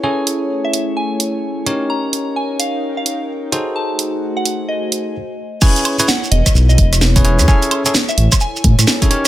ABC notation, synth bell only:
X:1
M:4/4
L:1/16
Q:"Swing 16ths" 1/4=129
K:Alyd
V:1 name="Synth bell"
g z4 e2 z g6- g z | ^a2 z2 g z =f2 z f2 z4 z | a z4 f2 z d6- d z | g2 z2 f z d2 z d2 z4 z |
g z4 e2 z g6- g z |]